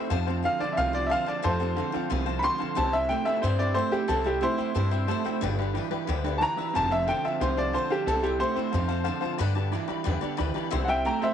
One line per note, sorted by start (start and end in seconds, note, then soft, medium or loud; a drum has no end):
0.00 0.10 C4 medium
0.00 0.11 E4 medium
0.00 0.10 C5 medium
0.10 0.46 F2 medium
0.10 0.26 F2 medium
0.10 0.27 C3 medium
0.10 0.27 F3 medium
0.10 0.27 A3 medium
0.10 0.28 C4 medium
0.10 0.28 F4 loud
0.10 0.20 C5 medium
0.10 0.26 C5 loud
0.10 0.21 F5 medium
0.10 0.21 A5 loud
0.27 0.43 F2 medium
0.27 0.43 C3 medium
0.27 0.43 C4 medium
0.27 0.44 F4 medium
0.27 0.37 C5 loud
0.27 0.44 C5 medium
0.27 0.37 F5 medium
0.27 0.37 A5 loud
0.43 0.59 F2 medium
0.43 0.59 D3 loud
0.43 0.60 A3 medium
0.43 0.61 C4 medium
0.43 0.61 F4 medium
0.43 0.54 C5 medium
0.43 0.59 C5 medium
0.43 0.54 F5 medium
0.43 0.61 F5 medium
0.43 0.54 A5 medium
0.59 0.76 F2 medium
0.59 0.76 D3 medium
0.59 0.78 F4 soft
0.59 0.70 C5 medium
0.59 0.77 C5 soft
0.59 0.77 D5 medium
0.59 0.71 F5 medium
0.59 0.71 A5 medium
0.59 muted upright bass stroke medium
0.64 0.77 C4 soft
0.73 0.87 C5 medium
0.73 0.75 E5 medium
0.73 0.87 F5 medium
0.73 0.87 C6 medium
0.77 1.13 C2 medium
0.77 0.92 F2 medium
0.77 0.93 C3 medium
0.77 0.94 F3 medium
0.77 0.94 A3 medium
0.77 0.95 C4 medium
0.77 0.94 F4 medium
0.77 0.92 C5 medium
0.77 0.94 F5 medium
0.93 1.09 F2 medium
0.93 1.09 C3 medium
0.93 1.10 C4 soft
0.93 1.11 F4 soft
0.93 1.10 C5 medium
0.93 1.04 C5 medium
0.93 1.11 D5 loud
0.93 1.04 F5 medium
0.93 1.04 C6 medium
1.07 1.25 F2 medium
1.07 1.27 A3 medium
1.07 1.20 C5 medium
1.07 1.09 E5 medium
1.07 1.20 F5 medium
1.07 1.21 A5 loud
1.11 1.25 D3 medium
1.11 1.28 C4 medium
1.11 1.27 F4 medium
1.11 1.25 C5 medium
1.11 1.27 F5 loud
1.26 1.42 F2 medium
1.26 1.42 D3 medium
1.26 1.42 C4 soft
1.26 1.43 F4 medium
1.26 1.44 C5 medium
1.26 1.37 C5 loud
1.26 1.44 D5 medium
1.26 1.37 F5 medium
1.26 1.37 A5 loud
1.26 muted upright bass stroke medium
1.43 1.59 F2 medium
1.43 1.79 F2 medium
1.43 1.59 C3 medium
1.43 1.60 F3 medium
1.43 1.60 A3 medium
1.43 1.60 C4 medium
1.43 1.60 F4 medium
1.43 2.06 A4 medium
1.43 1.54 C5 medium
1.43 2.09 C5 loud
1.43 1.59 C5 medium
1.43 1.54 F5 medium
1.43 1.54 A5 medium
1.60 1.74 F2 medium
1.60 1.75 C3 medium
1.60 1.77 C4 soft
1.60 1.77 F4 medium
1.60 1.77 C5 medium
1.60 1.70 C5 medium
1.60 1.71 F5 medium
1.60 1.71 A5 medium
1.76 1.91 F2 medium
1.76 1.92 D3 loud
1.76 1.94 A3 medium
1.76 1.94 C4 medium
1.76 1.93 F4 medium
1.76 1.87 C5 medium
1.76 1.87 F5 medium
1.76 1.87 C6 medium
1.80 1.91 C5 medium
1.92 2.09 F2 medium
1.92 2.09 D3 medium
1.92 2.09 C4 soft
1.92 2.10 F4 medium
1.92 2.10 C5 medium
1.92 2.04 C5 loud
1.92 2.04 F5 medium
1.92 2.04 G5 loud
1.92 muted upright bass stroke medium
2.09 2.46 C2 medium
2.09 2.25 F2 medium
2.09 2.25 C3 loud
2.09 2.27 F3 medium
2.09 2.27 A3 medium
2.09 2.27 C4 medium
2.09 2.26 F4 medium
2.09 2.20 C5 medium
2.09 2.25 C5 medium
2.09 2.20 F5 medium
2.09 2.20 C6 loud
2.26 2.41 F2 medium
2.26 2.42 C3 medium
2.26 2.42 C4 medium
2.26 2.43 F4 medium
2.26 2.36 C5 medium
2.26 2.43 C5 medium
2.26 2.37 F5 medium
2.26 2.37 A5 loud
2.39 2.58 F2 medium
2.39 2.58 D3 medium
2.39 2.60 A3 medium
2.39 2.53 C5 medium
2.39 2.53 F5 medium
2.39 2.42 B5 medium
2.43 2.60 C4 medium
2.43 2.59 F4 medium
2.43 2.57 C5 medium
2.43 2.54 G5 loud
2.43 2.76 C6 loud
2.58 2.75 F2 medium
2.58 2.75 D3 medium
2.58 2.76 C4 soft
2.58 2.77 F4 medium
2.58 2.76 C5 medium
2.58 2.69 C5 medium
2.58 2.70 F5 medium
2.58 2.70 A5 loud
2.58 muted upright bass stroke medium
2.75 3.12 C2 loud
2.75 2.93 C3 medium
2.75 2.92 C3 medium
2.75 2.93 E3 medium
2.75 2.93 G3 medium
2.75 2.92 G3 loud
2.75 2.93 C4 medium
2.75 2.92 E4 medium
2.75 2.86 C5 medium
2.75 2.91 C5 medium
2.75 2.86 E5 medium
2.75 2.87 G5 loud
2.75 2.93 A5 medium
2.92 3.08 C3 medium
2.92 3.09 G3 medium
2.92 3.08 G3 soft
2.92 3.09 C4 soft
2.92 3.10 E4 soft
2.92 3.09 C5 soft
2.92 3.03 C5 medium
2.92 3.03 E5 medium
2.92 3.10 E5 loud
2.92 3.03 G5 medium
3.09 3.25 C3 medium
3.09 3.26 G3 medium
3.09 3.25 A3 loud
3.09 3.27 C4 medium
3.09 3.26 E4 medium
3.09 3.20 C5 medium
3.09 3.25 C5 medium
3.09 3.20 E5 medium
3.09 3.26 G5 medium
3.09 3.20 G5 medium
3.25 3.41 C3 medium
3.25 3.41 A3 medium
3.25 3.43 C4 medium
3.25 3.44 E4 medium
3.25 3.36 C5 medium
3.25 3.43 C5 medium
3.25 3.36 E5 medium
3.25 3.42 E5 loud
3.25 3.36 A5 loud
3.25 muted upright bass stroke medium
3.29 3.43 G3 soft
3.42 3.78 G2 medium
3.42 3.57 C3 medium
3.42 3.60 C3 medium
3.42 3.60 E3 medium
3.42 3.58 G3 loud
3.42 3.60 G3 medium
3.42 3.60 C4 medium
3.42 3.59 E4 medium
3.42 3.59 C5 medium
3.42 3.53 C5 medium
3.42 3.58 C5 medium
3.42 3.53 E5 medium
3.42 3.53 G5 medium
3.58 3.74 C3 medium
3.58 3.74 G3 medium
3.58 3.75 C4 soft
3.58 3.76 E4 medium
3.58 3.69 C5 medium
3.58 3.76 C5 medium
3.58 3.76 D5 medium
3.58 3.69 E5 medium
3.58 3.69 G5 medium
3.62 3.74 G3 medium
3.74 3.91 C3 medium
3.74 3.92 G3 medium
3.74 3.91 A3 medium
3.74 3.93 C4 medium
3.74 3.92 E4 medium
3.74 3.85 C5 loud
3.74 3.92 C5 loud
3.74 3.86 E5 medium
3.74 3.86 G5 loud
3.78 3.90 C5 medium
3.91 4.07 C3 medium
3.91 4.08 G3 soft
3.91 4.08 A3 medium
3.91 4.08 C4 medium
3.91 4.09 E4 medium
3.91 4.09 G4 medium
3.91 4.02 C5 medium
3.91 4.09 C5 medium
3.91 4.02 E5 medium
3.91 4.03 G5 loud
3.91 muted upright bass stroke medium
4.08 4.44 C2 medium
4.08 4.25 C3 medium
4.08 4.24 C3 medium
4.08 4.26 E3 medium
4.08 4.24 G3 medium
4.08 4.26 G3 medium
4.08 4.25 C4 medium
4.08 4.24 E4 medium
4.08 4.25 A4 loud
4.08 4.19 C5 medium
4.08 4.23 C5 medium
4.08 4.19 E5 medium
4.08 4.19 G5 medium
4.24 4.40 C3 medium
4.24 4.41 G3 medium
4.24 4.40 G3 soft
4.24 4.41 C4 medium
4.24 4.42 E4 medium
4.24 4.42 G4 medium
4.24 4.42 C5 medium
4.24 4.36 C5 medium
4.24 4.36 E5 medium
4.24 4.36 G5 medium
4.41 4.57 C3 medium
4.41 4.58 G3 medium
4.41 4.57 A3 medium
4.41 4.59 C4 medium
4.41 5.38 E4 medium
4.41 4.58 E4 medium
4.41 4.52 C5 medium
4.41 5.39 C5 loud
4.41 4.57 C5 medium
4.41 4.52 E5 medium
4.41 4.52 G5 medium
4.57 4.74 C3 medium
4.57 4.74 G3 soft
4.57 4.74 A3 medium
4.57 4.75 C4 medium
4.57 4.75 E4 medium
4.57 4.68 C5 medium
4.57 4.75 C5 medium
4.57 4.68 E5 medium
4.57 4.69 G5 medium
4.57 muted upright bass stroke medium
4.74 5.10 G2 medium
4.74 4.92 C3 medium
4.74 4.90 C3 medium
4.74 4.92 E3 medium
4.74 4.90 G3 loud
4.74 4.92 G3 medium
4.74 4.93 C4 medium
4.74 4.91 E4 medium
4.74 4.85 C5 medium
4.74 4.90 C5 medium
4.74 4.85 E5 medium
4.74 4.86 A5 medium
4.91 5.07 C3 medium
4.91 5.07 G3 medium
4.91 5.08 C4 medium
4.91 5.09 E4 medium
4.91 5.02 C5 medium
4.91 5.08 C5 medium
4.91 5.02 E5 medium
4.91 5.02 G5 medium
5.07 5.23 C3 medium
5.07 5.25 G3 medium
5.07 5.24 A3 medium
5.07 5.26 C4 medium
5.07 5.25 E4 medium
5.07 5.18 C5 loud
5.07 5.23 C5 medium
5.07 5.18 E5 medium
5.07 5.19 A5 loud
5.24 5.40 C3 medium
5.24 5.40 G3 medium
5.24 5.40 A3 medium
5.24 5.42 C4 soft
5.24 5.42 E4 medium
5.24 5.42 C5 medium
5.24 5.35 C5 loud
5.24 5.35 E5 loud
5.24 5.36 G5 loud
5.24 muted upright bass stroke medium
5.41 5.77 G1 medium
5.41 5.56 G2 loud
5.41 5.57 D3 medium
5.41 5.58 G3 loud
5.41 5.59 D4 loud
5.41 5.59 G4 medium
5.41 5.52 B4 loud
5.41 5.57 B4 loud
5.41 5.52 D5 medium
5.41 5.53 G5 loud
5.58 5.73 G2 medium
5.58 5.74 D3 medium
5.58 5.75 D4 medium
5.58 5.76 G4 medium
5.58 5.75 B4 medium
5.58 5.69 B4 medium
5.58 5.69 D5 medium
5.58 5.69 G5 medium
5.74 5.89 G2 medium
5.74 5.90 E3 medium
5.74 5.92 G3 medium
5.74 5.92 D4 medium
5.74 5.91 G4 medium
5.74 5.85 B4 medium
5.74 5.85 D5 medium
5.74 5.85 G5 loud
5.78 5.90 B4 medium
5.91 6.06 G2 medium
5.91 6.06 E3 medium
5.91 6.07 D4 soft
5.91 6.08 G4 medium
5.91 6.08 B4 medium
5.91 6.01 B4 loud
5.91 6.02 D5 medium
5.91 6.02 G5 loud
5.91 muted upright bass stroke medium
6.07 6.43 D2 medium
6.07 6.22 G2 medium
6.07 6.23 D3 loud
6.07 6.24 G3 medium
6.07 6.25 D4 medium
6.07 6.25 G4 loud
6.07 6.18 B4 medium
6.07 6.23 B4 loud
6.07 6.18 D5 medium
6.07 6.19 G5 loud
6.24 6.39 G2 medium
6.24 6.39 D3 medium
6.24 6.42 G4 medium
6.24 6.34 B4 medium
6.24 6.41 B4 medium
6.24 6.35 D5 medium
6.24 6.35 G5 loud
6.28 6.41 D4 medium
6.38 6.56 G2 medium
6.38 6.56 E3 medium
6.38 6.58 G3 medium
6.38 6.51 B4 loud
6.38 6.51 D5 medium
6.38 6.51 G5 loud
6.38 6.40 A5 medium
6.42 6.59 D4 medium
6.42 6.59 G4 medium
6.42 6.57 B4 medium
6.42 6.74 A#5 loud
6.56 6.72 G2 medium
6.56 6.73 E3 medium
6.56 6.76 G4 medium
6.56 6.67 B4 medium
6.56 6.75 B4 medium
6.56 6.67 D5 medium
6.56 6.68 E5 loud
6.56 muted upright bass stroke medium
6.62 6.76 D4 soft
6.73 7.10 F1 medium
6.73 6.89 F2 medium
6.73 6.89 C3 loud
6.73 6.91 F3 medium
6.73 6.92 A3 medium
6.73 6.92 C4 medium
6.73 6.92 F4 medium
6.73 6.84 C5 medium
6.73 6.85 F5 medium
6.73 6.85 A5 loud
6.73 6.91 A5 loud
6.77 6.90 C5 medium
6.90 7.05 F2 medium
6.90 7.06 C3 medium
6.90 7.09 F4 soft
6.90 7.01 C5 medium
6.90 7.08 C5 medium
6.90 7.08 E5 loud
6.90 7.01 F5 medium
6.90 7.01 A5 medium
6.95 7.08 C4 soft
7.06 7.22 F2 medium
7.06 7.22 D3 loud
7.06 7.24 A3 medium
7.06 7.25 C4 medium
7.06 7.25 F4 medium
7.06 7.17 C5 medium
7.06 7.17 F5 medium
7.06 7.24 G5 medium
7.06 7.18 A5 medium
7.11 7.24 C5 medium
7.23 7.39 F2 medium
7.23 7.39 D3 medium
7.23 7.41 F4 medium
7.23 7.34 C5 medium
7.23 7.41 C5 medium
7.23 7.41 E5 medium
7.23 7.34 F5 medium
7.23 7.35 A5 medium
7.23 muted upright bass stroke medium
7.28 7.41 C4 soft
7.40 7.76 C2 medium
7.40 7.56 F2 medium
7.40 7.56 C3 loud
7.40 7.58 F3 medium
7.40 7.58 A3 medium
7.40 7.58 C4 medium
7.40 7.57 F4 medium
7.40 7.50 C5 medium
7.40 7.57 C5 medium
7.40 7.56 C5 medium
7.40 7.51 F5 medium
7.40 7.51 G5 medium
7.57 7.72 F2 medium
7.57 7.72 C3 medium
7.57 7.75 C4 soft
7.57 7.75 F4 medium
7.57 7.67 C5 medium
7.57 7.74 C5 medium
7.57 7.74 D5 medium
7.57 7.67 F5 medium
7.57 7.67 A5 medium
7.73 7.89 F2 medium
7.73 7.89 D3 medium
7.73 7.91 A3 medium
7.73 7.91 C4 medium
7.73 7.91 F4 medium
7.73 7.84 C5 loud
7.73 7.90 C5 medium
7.73 7.84 F5 medium
7.73 7.84 A5 loud
7.78 7.89 C5 medium
7.90 8.05 F2 medium
7.90 8.05 D3 medium
7.90 8.08 C4 medium
7.90 8.08 F4 medium
7.90 8.07 G4 medium
7.90 8.00 C5 medium
7.90 8.07 C5 medium
7.90 8.00 F5 medium
7.90 8.01 A5 loud
7.90 muted upright bass stroke medium
8.06 8.42 C2 medium
8.06 8.22 C3 medium
8.06 8.24 C3 medium
8.06 8.24 E3 medium
8.06 8.22 G3 loud
8.06 8.24 G3 medium
8.06 8.24 C4 medium
8.06 8.23 E4 loud
8.06 8.23 A4 loud
8.06 8.17 C5 medium
8.06 8.22 C5 medium
8.06 8.17 E5 medium
8.06 8.17 G5 loud
8.23 8.38 C3 medium
8.23 8.39 G3 medium
8.23 8.39 G3 soft
8.23 8.40 C4 medium
8.23 8.41 E4 medium
8.23 8.40 G4 medium
8.23 8.33 C5 medium
8.23 8.40 C5 medium
8.23 8.33 E5 medium
8.23 8.33 G5 medium
8.39 8.54 C3 medium
8.39 8.57 G3 medium
8.39 8.55 A3 loud
8.39 8.57 C4 medium
8.39 8.56 E4 medium
8.39 8.49 C5 medium
8.39 9.37 C5 loud
8.39 8.50 E5 medium
8.39 8.50 G5 medium
8.44 8.55 C5 medium
8.55 8.71 C3 medium
8.55 8.71 A3 medium
8.55 8.74 E4 medium
8.55 8.66 C5 medium
8.55 8.73 C5 medium
8.55 8.66 E5 medium
8.55 8.66 G5 medium
8.55 muted upright bass stroke medium
8.59 8.74 G3 soft
8.59 8.73 C4 soft
8.71 8.88 F2 medium
8.71 9.09 F2 loud
8.71 8.88 C3 medium
8.71 8.90 F3 medium
8.71 8.90 A3 medium
8.71 8.90 C4 medium
8.71 8.89 F4 medium
8.71 8.82 C5 medium
8.71 8.87 C5 medium
8.71 8.82 F5 medium
8.71 8.83 A5 medium
8.88 9.05 F2 medium
8.88 9.05 C3 medium
8.88 9.06 F4 medium
8.88 8.99 C5 medium
8.88 9.06 C5 medium
8.88 8.99 F5 medium
8.88 8.99 A5 loud
8.92 9.05 C4 medium
9.04 9.21 F2 medium
9.04 9.21 D3 medium
9.04 9.22 A3 medium
9.04 9.23 C4 medium
9.04 9.23 F4 medium
9.04 9.15 C5 loud
9.04 9.21 C5 medium
9.04 9.15 F5 loud
9.04 9.16 A5 loud
9.21 9.37 F2 medium
9.21 9.38 D3 medium
9.21 9.40 F4 medium
9.21 9.32 C5 loud
9.21 9.39 C5 medium
9.21 9.32 F5 medium
9.21 9.33 A5 loud
9.21 muted upright bass stroke medium
9.25 9.39 C4 medium
9.38 9.54 G2 medium
9.38 9.75 G2 medium
9.38 9.55 D3 medium
9.38 9.56 G3 loud
9.38 9.56 D4 loud
9.38 9.55 G4 loud
9.38 9.54 B4 loud
9.38 9.49 D5 loud
9.38 9.49 G5 medium
9.38 9.49 B5 loud
9.55 9.71 G2 medium
9.55 9.71 D3 medium
9.55 9.72 D4 medium
9.55 9.73 G4 medium
9.55 9.72 B4 medium
9.55 9.66 D5 loud
9.55 9.66 G5 medium
9.55 9.66 A5 loud
9.72 9.87 G2 medium
9.72 9.88 E3 medium
9.72 9.89 G3 medium
9.72 9.89 D4 medium
9.72 9.88 G4 medium
9.72 9.86 B4 medium
9.72 9.82 D5 medium
9.72 9.83 G5 medium
9.72 9.83 B5 medium
9.88 10.04 G2 medium
9.88 10.04 E3 medium
9.88 10.04 D4 soft
9.88 10.05 G4 medium
9.88 10.05 B4 medium
9.88 9.99 D5 loud
9.88 9.99 G5 medium
9.88 9.99 B5 loud
9.88 muted upright bass stroke medium
10.04 10.20 E2 loud
10.04 10.21 G2 medium
10.04 10.21 D3 loud
10.04 10.22 G3 loud
10.04 10.22 D4 medium
10.04 10.21 G4 medium
10.04 10.20 B4 medium
10.04 10.15 D5 medium
10.04 10.16 G5 medium
10.04 10.16 B5 loud
10.21 10.38 G2 medium
10.21 10.38 D3 medium
10.21 10.37 D4 medium
10.21 10.38 G4 medium
10.21 10.38 B4 medium
10.21 10.32 D5 medium
10.21 10.32 G5 medium
10.21 10.32 B5 loud
10.21 muted upright bass stroke medium
10.37 10.54 D2 medium
10.37 10.54 G2 medium
10.37 10.54 E3 loud
10.37 10.55 G3 medium
10.37 10.55 D4 medium
10.37 10.55 G4 medium
10.37 10.53 B4 medium
10.37 10.48 D5 loud
10.37 10.49 G5 loud
10.37 10.49 B5 loud
10.54 10.70 G2 medium
10.54 10.71 E3 medium
10.54 10.72 D4 medium
10.54 10.72 G4 medium
10.54 10.72 B4 medium
10.54 10.65 D5 loud
10.54 10.66 G5 medium
10.54 10.66 B5 loud
10.54 muted upright bass stroke medium
10.70 11.08 C2 medium
10.70 10.88 C3 medium
10.70 10.87 C3 medium
10.70 10.88 E3 medium
10.70 10.88 G3 loud
10.70 10.87 G3 loud
10.70 10.89 C4 loud
10.70 10.88 E4 medium
10.70 10.87 C5 loud
10.70 10.82 E5 loud
10.70 10.82 G5 loud
10.70 10.82 C6 loud
10.85 11.04 C3 medium
10.85 11.04 G3 medium
10.85 11.05 C5 medium
10.85 10.98 E5 medium
10.85 11.04 E5 medium
10.85 10.87 F#5 medium
10.85 10.99 G5 medium
10.89 11.04 G3 soft
10.89 11.05 C4 medium
10.89 11.06 E4 medium
10.89 11.04 G5 medium
10.89 10.99 C6 medium
11.05 11.20 C3 medium
11.05 11.22 G3 medium
11.05 11.21 A3 loud
11.05 11.23 C4 medium
11.05 11.21 E4 medium
11.05 11.21 C5 medium
11.05 11.16 E5 medium
11.05 11.21 G5 medium
11.05 11.16 G5 medium
11.05 11.16 A5 medium
11.05 11.22 A#5 medium
11.21 11.34 C3 medium
11.21 11.34 G3 soft
11.21 11.34 A3 medium
11.21 11.34 C4 soft
11.21 11.34 E4 soft
11.21 11.34 C5 medium
11.21 11.32 E5 medium
11.21 11.34 E5 medium
11.21 11.32 G5 medium
11.21 11.32 C6 loud
11.21 muted upright bass stroke medium